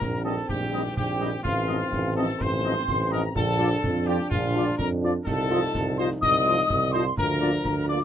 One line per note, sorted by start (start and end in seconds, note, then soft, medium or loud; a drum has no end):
0.00 0.41 A#1 medium
0.00 1.43 D#3 medium
0.00 1.41 C4 medium
0.00 0.20 A#4 medium
0.00 0.21 A#5 medium
0.00 concert bass drum medium
0.00 snare medium
0.24 0.33 G3 medium
0.24 0.33 C4 medium
0.24 0.33 D#4 medium
0.24 0.48 A4 medium
0.24 0.33 D#5 medium
0.24 0.49 A5 medium
0.37 snare medium
0.48 0.88 A#1 medium
0.48 0.93 G4 loud
0.48 0.95 G5 medium
0.48 concert bass drum medium
0.48 snare medium
0.71 0.80 G3 medium
0.71 0.80 C4 medium
0.71 0.81 C4 medium
0.71 0.80 D#4 medium
0.71 0.81 D#5 medium
0.96 1.36 A#1 medium
0.96 1.41 G4 medium
0.96 1.41 G5 medium
0.96 concert bass drum medium
0.96 snare medium
1.19 1.28 G3 medium
1.19 1.28 C4 medium
1.19 1.29 C4 medium
1.19 1.28 D#4 medium
1.19 1.29 D#5 medium
1.19 snare medium
1.43 1.84 A1 medium
1.43 3.31 D#3 medium
1.43 3.32 C4 medium
1.43 2.11 F4 loud
1.43 2.12 F5 medium
1.43 concert bass drum medium
1.43 snare medium
1.43 crash soft
1.67 1.76 F3 medium
1.67 1.76 C4 medium
1.67 1.77 C4 medium
1.67 1.76 D#4 medium
1.67 1.77 D#5 medium
1.67 snare medium
1.81 snare soft
1.92 2.32 A1 medium
1.92 concert bass drum medium
1.92 snare medium
2.16 2.25 F3 medium
2.16 2.25 C4 medium
2.16 2.25 D#4 medium
2.16 2.38 A4 medium
2.16 2.25 D#5 medium
2.16 2.40 A5 medium
2.29 snare medium
2.40 2.80 A1 medium
2.40 3.12 C5 loud
2.40 3.12 C6 medium
2.40 concert bass drum medium
2.40 snare medium
2.64 2.73 F3 medium
2.64 2.73 C4 medium
2.64 2.73 D#4 medium
2.64 2.73 D#5 medium
2.88 3.28 A1 medium
2.88 concert bass drum medium
2.88 snare medium
3.11 3.20 F3 medium
3.11 3.20 C4 medium
3.11 3.21 C4 medium
3.11 3.20 D#4 medium
3.11 3.22 A#4 medium
3.11 3.20 D#5 medium
3.11 3.35 A#5 medium
3.11 snare medium
3.35 3.75 A#1 medium
3.35 5.23 F3 medium
3.35 5.27 D4 medium
3.35 4.03 A4 loud
3.35 3.80 A5 medium
3.35 concert bass drum medium
3.35 snare medium
3.59 3.68 F3 medium
3.59 3.67 D4 medium
3.59 3.67 F4 medium
3.59 3.68 F4 medium
3.59 3.68 D5 medium
3.59 snare soft
3.72 snare medium
3.83 4.19 F2 medium
3.83 concert bass drum medium
3.83 snare medium
4.06 4.16 F3 medium
4.06 4.16 D4 medium
4.06 4.16 F4 medium
4.06 4.30 G4 medium
4.06 4.17 D5 medium
4.06 4.30 G5 medium
4.20 snare soft
4.30 4.71 A#1 medium
4.30 4.75 F4 loud
4.30 4.78 F5 medium
4.30 concert bass drum medium
4.30 snare medium
4.54 4.63 F3 medium
4.54 4.63 D4 medium
4.54 4.63 F4 medium
4.54 4.64 F4 medium
4.54 4.65 D5 medium
4.78 5.18 F2 medium
4.78 4.89 A#4 loud
4.78 4.84 A#5 medium
4.78 concert bass drum medium
4.78 snare medium
5.02 5.11 F3 medium
5.02 5.11 D4 medium
5.02 5.11 F4 medium
5.02 5.12 F4 medium
5.02 5.12 D5 medium
5.25 5.66 C2 medium
5.25 7.00 F3 medium
5.25 7.00 D#4 medium
5.25 5.93 A4 loud
5.25 5.94 A5 medium
5.25 concert bass drum medium
5.25 snare medium
5.25 crash soft
5.50 5.59 F3 medium
5.50 5.59 D#4 medium
5.50 5.59 F4 medium
5.50 5.60 F4 medium
5.50 5.60 D#5 medium
5.50 snare soft
5.63 snare soft
5.74 6.14 C2 medium
5.74 concert bass drum medium
5.74 snare medium
5.98 6.07 F3 medium
5.98 6.07 D#4 medium
5.98 6.07 F4 medium
5.98 6.09 C5 loud
5.98 6.07 D#5 medium
5.98 6.04 C6 medium
6.10 snare soft
6.21 6.62 C2 medium
6.21 6.90 D#5 loud
6.21 6.89 D#6 medium
6.21 concert bass drum medium
6.21 snare medium
6.46 6.55 F3 medium
6.46 6.55 D#4 medium
6.46 6.54 F4 medium
6.46 6.55 F4 medium
6.46 6.55 D#5 medium
6.70 7.10 C2 medium
6.70 concert bass drum medium
6.70 snare medium
6.92 7.02 F3 medium
6.92 7.02 D#4 medium
6.92 7.02 F4 medium
6.92 7.03 F4 medium
6.92 7.04 C5 medium
6.92 7.02 D#5 medium
6.92 7.17 C6 medium
6.92 snare medium
7.17 7.57 D2 medium
7.17 8.04 F3 medium
7.17 8.04 D4 medium
7.17 7.85 A#4 loud
7.17 7.85 A#5 medium
7.17 concert bass drum medium
7.17 snare medium
7.41 7.50 A#3 medium
7.41 7.50 D4 medium
7.41 7.50 F4 medium
7.41 7.50 D5 medium
7.41 snare soft
7.53 snare medium
7.65 8.04 D2 medium
7.65 concert bass drum medium
7.65 snare medium
7.88 7.98 A#3 medium
7.88 7.98 D4 medium
7.88 7.97 F4 medium
7.88 7.98 F4 medium
7.88 7.97 D5 medium
7.88 8.00 D5 medium
7.88 8.04 D6 medium
8.01 snare medium